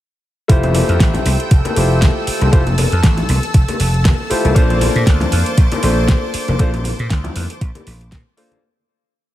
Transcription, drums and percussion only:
0.49 kick loud
0.49 closed hi-hat medium
0.63 closed hi-hat soft
0.63 low conga loud
0.74 open hi-hat loud
0.74 high conga loud
0.89 closed hi-hat soft
1.00 kick loud
1.00 snare loud
1.00 closed hi-hat medium
1.14 closed hi-hat soft
1.14 low conga loud
1.25 open hi-hat loud
1.25 high conga medium
1.40 closed hi-hat medium
1.51 kick loud
1.51 closed hi-hat medium
1.65 closed hi-hat medium
1.65 high conga loud
1.76 open hi-hat loud
2.02 kick loud
2.02 snare loud
2.02 closed hi-hat medium
2.02 high conga medium
2.27 open hi-hat loud
2.41 closed hi-hat soft
2.41 high conga medium
2.53 kick loud
2.53 closed hi-hat medium
2.67 closed hi-hat soft
2.67 low conga loud
2.78 open hi-hat loud
2.78 high conga loud
2.92 closed hi-hat soft
3.03 kick loud
3.03 snare loud
3.03 closed hi-hat medium
3.17 closed hi-hat soft
3.17 low conga medium
3.29 open hi-hat loud
3.29 high conga medium
3.43 closed hi-hat medium
3.54 kick loud
3.54 closed hi-hat medium
3.68 closed hi-hat medium
3.68 high conga medium
3.80 open hi-hat loud
3.94 closed hi-hat soft
4.05 kick loud
4.05 snare loud
4.05 closed hi-hat medium
4.05 high conga medium
4.31 open hi-hat loud
4.45 closed hi-hat soft
4.45 high conga medium
4.56 kick loud
4.56 closed hi-hat medium
4.70 closed hi-hat soft
4.70 low conga medium
4.81 open hi-hat loud
4.81 high conga loud
4.96 closed hi-hat soft
5.07 kick loud
5.07 snare loud
5.07 closed hi-hat medium
5.20 closed hi-hat soft
5.20 low conga loud
5.32 open hi-hat loud
5.32 high conga medium
5.46 closed hi-hat medium
5.58 kick loud
5.58 closed hi-hat medium
5.72 closed hi-hat medium
5.72 high conga loud
5.83 open hi-hat loud
6.08 kick loud
6.08 snare loud
6.08 closed hi-hat medium
6.08 high conga medium
6.34 open hi-hat loud
6.48 closed hi-hat soft
6.48 high conga medium
6.59 kick loud
6.59 closed hi-hat medium
6.74 closed hi-hat soft
6.74 low conga loud
6.84 open hi-hat loud
6.84 high conga medium
6.99 closed hi-hat soft
7.10 kick loud
7.10 snare loud
7.10 closed hi-hat medium
7.24 closed hi-hat soft
7.24 low conga loud
7.36 open hi-hat loud
7.36 high conga medium
7.50 closed hi-hat medium
7.61 kick loud
7.61 closed hi-hat medium
7.75 closed hi-hat medium
7.75 high conga medium
7.87 open hi-hat loud
8.01 closed hi-hat soft
8.11 kick loud
8.11 snare loud
8.11 closed hi-hat medium
8.11 high conga medium
8.37 open hi-hat loud
8.51 closed hi-hat soft
8.51 high conga medium

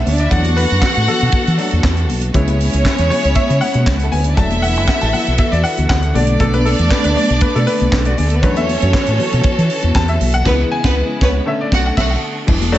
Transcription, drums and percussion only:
0.06 open hi-hat medium
0.06 high conga medium
0.18 closed hi-hat medium
0.31 kick medium
0.31 closed hi-hat medium
0.31 low conga medium
0.44 closed hi-hat soft
0.44 muted conga soft
0.44 high conga medium
0.57 open hi-hat medium
0.70 closed hi-hat medium
0.82 kick loud
0.82 snare loud
0.82 clap medium
0.82 muted conga soft
0.95 closed hi-hat medium
1.07 open hi-hat medium
1.07 high conga medium
1.07 low conga medium
1.21 closed hi-hat soft
1.32 kick loud
1.32 closed hi-hat medium
1.32 high conga medium
1.47 closed hi-hat soft
1.58 open hi-hat medium
1.71 closed hi-hat soft
1.71 high conga medium
1.83 kick loud
1.83 snare loud
1.83 clap medium
1.83 muted conga soft
1.97 closed hi-hat soft
2.09 open hi-hat medium
2.09 high conga medium
2.21 closed hi-hat medium
2.34 kick loud
2.34 closed hi-hat medium
2.34 muted conga soft
2.34 low conga medium
2.47 closed hi-hat soft
2.47 muted conga soft
2.47 high conga medium
2.60 open hi-hat medium
2.73 closed hi-hat medium
2.85 kick medium
2.85 snare loud
2.85 clap loud
2.85 muted conga soft
2.98 closed hi-hat medium
2.98 muted conga soft
3.10 open hi-hat medium
3.10 high conga medium
3.10 low conga medium
3.24 closed hi-hat soft
3.35 kick loud
3.35 closed hi-hat medium
3.35 muted conga soft
3.35 high conga medium
3.50 closed hi-hat soft
3.61 open hi-hat medium
3.74 closed hi-hat soft
3.74 high conga medium
3.86 kick loud
3.86 snare loud
3.86 clap medium
3.86 muted conga soft
4.00 closed hi-hat soft
4.12 open hi-hat medium
4.12 high conga medium
4.24 closed hi-hat medium
4.37 kick loud
4.37 closed hi-hat medium
4.37 low conga medium
4.50 closed hi-hat soft
4.50 high conga medium
4.63 open hi-hat medium
4.76 closed hi-hat medium
4.88 kick loud
4.88 snare loud
4.88 clap medium
4.88 muted conga soft
5.01 closed hi-hat medium
5.12 open hi-hat medium
5.12 high conga medium
5.12 low conga medium
5.27 closed hi-hat soft
5.38 kick loud
5.38 closed hi-hat medium
5.38 muted conga soft
5.38 high conga medium
5.52 closed hi-hat soft
5.52 muted conga soft
5.64 open hi-hat medium
5.77 closed hi-hat soft
5.77 high conga medium
5.89 kick loud
5.89 snare loud
5.89 clap loud
6.02 closed hi-hat soft
6.15 open hi-hat medium
6.15 high conga medium
6.27 closed hi-hat soft
6.40 kick loud
6.40 closed hi-hat medium
6.40 muted conga soft
6.40 low conga medium
6.53 closed hi-hat soft
6.53 muted conga soft
6.53 high conga medium
6.66 open hi-hat medium
6.79 closed hi-hat medium
6.91 kick loud
6.91 snare loud
6.91 clap loud
6.91 muted conga soft
7.04 closed hi-hat medium
7.04 muted conga soft
7.16 open hi-hat medium
7.16 high conga medium
7.16 low conga medium
7.30 closed hi-hat medium
7.41 kick loud
7.41 closed hi-hat medium
7.41 high conga medium
7.56 closed hi-hat soft
7.67 open hi-hat medium
7.80 closed hi-hat soft
7.80 high conga medium
7.92 kick loud
7.92 snare loud
7.92 clap medium
7.92 muted conga soft
8.05 closed hi-hat soft
8.05 muted conga soft
8.17 open hi-hat medium
8.17 high conga medium
8.30 closed hi-hat medium
8.42 kick loud
8.42 closed hi-hat medium
8.42 low conga medium
8.56 closed hi-hat soft
8.56 high conga medium
8.69 open hi-hat medium
8.82 closed hi-hat medium
8.93 kick loud
8.93 snare loud
8.93 clap medium
8.93 muted conga soft
9.06 closed hi-hat medium
9.06 muted conga soft
9.18 open hi-hat medium
9.18 high conga medium
9.18 low conga medium
9.32 closed hi-hat soft
9.43 kick loud
9.43 closed hi-hat medium
9.43 high conga medium
9.58 closed hi-hat soft
9.58 muted conga soft
9.70 open hi-hat medium
9.82 closed hi-hat soft
9.82 high conga medium
9.95 kick loud
9.95 snare loud
9.95 clap loud
10.08 closed hi-hat soft
10.20 open hi-hat medium
10.20 high conga medium
10.32 closed hi-hat medium
10.45 kick loud
10.45 snare loud
10.45 crash medium
10.84 kick loud
10.84 snare loud
11.21 kick loud
11.21 snare loud
11.72 kick loud
11.72 snare loud
11.97 kick loud
11.97 snare loud
11.97 crash medium
12.48 kick loud
12.48 crash loud
12.48 low conga medium
12.61 closed hi-hat soft
12.61 muted conga soft
12.61 high conga medium
12.74 open hi-hat medium

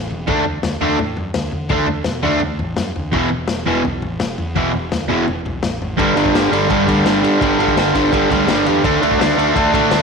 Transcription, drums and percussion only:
0.11 floor tom medium
0.28 kick loud
0.28 floor tom medium
0.46 floor tom medium
0.63 snare loud
0.63 floor tom medium
0.81 floor tom medium
0.99 floor tom medium
1.17 floor tom medium
1.34 snare loud
1.34 floor tom medium
1.52 floor tom medium
1.69 kick loud
1.69 floor tom medium
1.87 floor tom medium
2.04 snare loud
2.04 floor tom medium
2.23 floor tom medium
2.40 floor tom medium
2.59 floor tom medium
2.77 snare loud
2.77 floor tom medium
2.96 floor tom medium
3.13 kick loud
3.13 floor tom medium
3.30 floor tom medium
3.48 snare loud
3.48 floor tom medium
3.66 floor tom medium
3.85 floor tom medium
4.02 floor tom medium
4.20 snare loud
4.20 floor tom medium
4.38 floor tom medium
4.56 kick loud
4.56 floor tom medium
4.74 floor tom medium
4.92 snare loud
4.92 floor tom medium
5.10 floor tom medium
5.28 floor tom medium
5.46 floor tom medium
5.63 snare loud
5.63 floor tom medium
5.82 floor tom medium
5.99 kick loud
5.99 ride medium
6.17 ride medium
6.26 kick medium
6.35 snare loud
6.35 ride loud
6.53 ride medium
6.70 kick loud
6.70 ride loud
6.88 kick medium
6.88 ride medium
7.06 snare loud
7.06 ride loud
7.24 ride medium
7.41 kick loud
7.41 ride loud
7.60 ride medium
7.68 kick medium
7.77 snare loud
7.77 ride loud
7.95 kick medium
7.95 ride medium
8.13 kick loud
8.13 ride loud
8.31 kick medium
8.31 ride medium
8.48 snare loud
8.48 ride loud
8.66 ride medium
8.84 kick loud
8.84 ride loud
9.03 ride medium
9.11 kick medium
9.21 snare loud
9.21 ride medium
9.39 ride medium
9.56 kick loud
9.56 ride loud
9.74 kick medium
9.74 ride medium
9.91 snare loud
9.91 ride loud

